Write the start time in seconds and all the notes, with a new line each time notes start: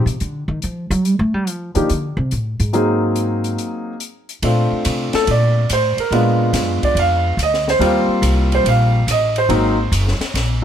0.06 C3, closed hi-hat
0.20 D3, closed hi-hat
0.48 D#3
0.62 F3, closed hi-hat
0.90 F#3, closed hi-hat
1.05 G3, closed hi-hat
1.19 A3
1.34 G3
1.47 F3, closed hi-hat
1.75 D#3 F3 A#3 D4 D#4 G4, closed hi-hat
1.89 D3, closed hi-hat
2.17 C3
2.31 A2, closed hi-hat
2.60 G#2, closed hi-hat
2.73 F#3 A#3 C4 D#4 G#4, closed hi-hat
3.16 closed hi-hat
3.44 closed hi-hat
3.58 closed hi-hat
4.00 closed hi-hat
4.29 closed hi-hat
4.42 A#2 A3 C4 D4 F4, ride
4.72 muted upright bass stroke
4.85 C3, hi-hat pedal, ride
5.13 A4, muted upright bass stroke, snare, ride
5.27 A#2 D5, ride
5.69 A2 C5, hi-hat pedal, ride
5.97 A#4, muted upright bass stroke, ride
6.11 A#2 G#3 B3 D4 F4, ride
6.53 F#2, snare, hi-hat pedal, ride
6.83 D5, muted upright bass stroke, kick, ride
6.95 F2, ride
6.99 F5
7.37 D2, hi-hat pedal, ride
7.43 D#5
7.54 snare
7.68 C5, snare
7.79 D#2 G3 A#3 C4 F4, ride
8.08 muted upright bass stroke
8.22 C2, hi-hat pedal, ride
8.52 C5, ride
8.64 A#1, ride
8.69 F5
9.07 A1 D#5, hi-hat pedal, ride
9.36 C5, ride
9.49 G#1 F#3 A#3 C4 D#4, ride
9.92 F#1, hi-hat pedal, ride
10.08 snare
10.19 muted upright bass stroke, snare, ride
10.34 A#1, snare, ride